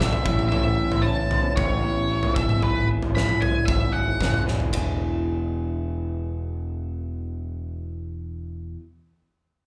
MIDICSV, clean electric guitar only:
0, 0, Header, 1, 2, 480
1, 0, Start_track
1, 0, Key_signature, 4, "major"
1, 0, Tempo, 526085
1, 469, Time_signature, 4, 2, 24, 8
1, 8814, End_track
2, 0, Start_track
2, 0, Title_t, "Clean electric guitar"
2, 0, Program_c, 0, 27
2, 0, Note_on_c, 0, 50, 62
2, 0, Note_on_c, 0, 57, 61
2, 0, Note_on_c, 0, 62, 65
2, 4, Note_on_c, 0, 66, 75
2, 212, Note_off_c, 0, 50, 0
2, 218, Note_off_c, 0, 57, 0
2, 219, Note_off_c, 0, 62, 0
2, 222, Note_off_c, 0, 66, 0
2, 226, Note_on_c, 0, 64, 77
2, 231, Note_on_c, 0, 61, 69
2, 237, Note_on_c, 0, 59, 65
2, 242, Note_on_c, 0, 52, 71
2, 244, Note_on_c, 0, 45, 61
2, 449, Note_off_c, 0, 45, 0
2, 460, Note_on_c, 0, 45, 72
2, 463, Note_off_c, 0, 52, 0
2, 466, Note_off_c, 0, 61, 0
2, 467, Note_on_c, 0, 52, 81
2, 468, Note_off_c, 0, 59, 0
2, 472, Note_on_c, 0, 59, 85
2, 474, Note_off_c, 0, 64, 0
2, 477, Note_on_c, 0, 61, 96
2, 478, Note_on_c, 0, 64, 85
2, 701, Note_off_c, 0, 64, 0
2, 704, Note_off_c, 0, 61, 0
2, 705, Note_on_c, 0, 64, 68
2, 715, Note_on_c, 0, 61, 58
2, 721, Note_off_c, 0, 59, 0
2, 724, Note_on_c, 0, 59, 53
2, 933, Note_off_c, 0, 45, 0
2, 944, Note_on_c, 0, 45, 77
2, 947, Note_off_c, 0, 52, 0
2, 951, Note_off_c, 0, 61, 0
2, 951, Note_on_c, 0, 52, 82
2, 953, Note_off_c, 0, 59, 0
2, 956, Note_on_c, 0, 59, 79
2, 961, Note_off_c, 0, 64, 0
2, 962, Note_on_c, 0, 61, 91
2, 965, Note_on_c, 0, 64, 85
2, 1663, Note_off_c, 0, 64, 0
2, 1666, Note_off_c, 0, 61, 0
2, 1667, Note_on_c, 0, 64, 74
2, 1677, Note_on_c, 0, 61, 65
2, 1683, Note_off_c, 0, 59, 0
2, 1687, Note_on_c, 0, 59, 55
2, 1907, Note_off_c, 0, 45, 0
2, 1907, Note_off_c, 0, 52, 0
2, 1911, Note_on_c, 0, 52, 60
2, 1913, Note_off_c, 0, 61, 0
2, 1915, Note_off_c, 0, 59, 0
2, 1918, Note_on_c, 0, 59, 59
2, 1924, Note_on_c, 0, 61, 60
2, 1926, Note_off_c, 0, 64, 0
2, 1929, Note_on_c, 0, 64, 70
2, 2142, Note_off_c, 0, 61, 0
2, 2149, Note_off_c, 0, 64, 0
2, 2153, Note_on_c, 0, 68, 71
2, 2156, Note_off_c, 0, 59, 0
2, 2157, Note_on_c, 0, 64, 65
2, 2160, Note_off_c, 0, 52, 0
2, 2160, Note_on_c, 0, 59, 68
2, 2163, Note_on_c, 0, 54, 68
2, 2165, Note_on_c, 0, 52, 62
2, 2171, Note_on_c, 0, 44, 59
2, 2375, Note_off_c, 0, 44, 0
2, 2381, Note_off_c, 0, 52, 0
2, 2384, Note_off_c, 0, 54, 0
2, 2386, Note_on_c, 0, 44, 81
2, 2388, Note_off_c, 0, 59, 0
2, 2392, Note_off_c, 0, 64, 0
2, 2392, Note_on_c, 0, 52, 81
2, 2395, Note_off_c, 0, 68, 0
2, 2395, Note_on_c, 0, 54, 78
2, 2399, Note_on_c, 0, 59, 86
2, 2403, Note_on_c, 0, 64, 85
2, 2406, Note_on_c, 0, 68, 86
2, 2617, Note_off_c, 0, 68, 0
2, 2624, Note_off_c, 0, 64, 0
2, 2628, Note_on_c, 0, 68, 65
2, 2629, Note_off_c, 0, 59, 0
2, 2635, Note_on_c, 0, 64, 58
2, 2636, Note_off_c, 0, 54, 0
2, 2640, Note_on_c, 0, 59, 55
2, 2647, Note_on_c, 0, 54, 52
2, 2855, Note_off_c, 0, 44, 0
2, 2860, Note_off_c, 0, 52, 0
2, 2862, Note_off_c, 0, 54, 0
2, 2865, Note_off_c, 0, 59, 0
2, 2866, Note_on_c, 0, 44, 70
2, 2870, Note_off_c, 0, 64, 0
2, 2871, Note_on_c, 0, 52, 81
2, 2872, Note_off_c, 0, 68, 0
2, 2873, Note_on_c, 0, 54, 76
2, 2876, Note_on_c, 0, 59, 74
2, 2881, Note_on_c, 0, 64, 89
2, 2883, Note_on_c, 0, 68, 86
2, 3576, Note_off_c, 0, 68, 0
2, 3584, Note_off_c, 0, 64, 0
2, 3587, Note_on_c, 0, 68, 66
2, 3592, Note_off_c, 0, 59, 0
2, 3595, Note_on_c, 0, 64, 63
2, 3597, Note_off_c, 0, 54, 0
2, 3603, Note_on_c, 0, 59, 51
2, 3608, Note_on_c, 0, 54, 55
2, 3819, Note_off_c, 0, 54, 0
2, 3827, Note_off_c, 0, 59, 0
2, 3828, Note_off_c, 0, 44, 0
2, 3830, Note_on_c, 0, 54, 50
2, 3831, Note_off_c, 0, 52, 0
2, 3832, Note_off_c, 0, 64, 0
2, 3837, Note_off_c, 0, 68, 0
2, 3838, Note_on_c, 0, 59, 61
2, 3843, Note_on_c, 0, 64, 68
2, 3848, Note_on_c, 0, 68, 62
2, 4059, Note_off_c, 0, 68, 0
2, 4067, Note_off_c, 0, 64, 0
2, 4070, Note_on_c, 0, 68, 51
2, 4072, Note_off_c, 0, 59, 0
2, 4078, Note_on_c, 0, 64, 52
2, 4080, Note_off_c, 0, 54, 0
2, 4083, Note_on_c, 0, 59, 44
2, 4091, Note_on_c, 0, 54, 44
2, 4296, Note_off_c, 0, 68, 0
2, 4300, Note_off_c, 0, 64, 0
2, 4302, Note_off_c, 0, 59, 0
2, 4306, Note_off_c, 0, 54, 0
2, 4308, Note_on_c, 0, 40, 79
2, 4318, Note_on_c, 0, 47, 75
2, 4323, Note_on_c, 0, 52, 73
2, 4330, Note_on_c, 0, 59, 80
2, 4337, Note_on_c, 0, 64, 80
2, 4344, Note_on_c, 0, 68, 97
2, 8017, Note_off_c, 0, 40, 0
2, 8027, Note_off_c, 0, 47, 0
2, 8033, Note_off_c, 0, 52, 0
2, 8040, Note_off_c, 0, 59, 0
2, 8047, Note_off_c, 0, 64, 0
2, 8054, Note_off_c, 0, 68, 0
2, 8814, End_track
0, 0, End_of_file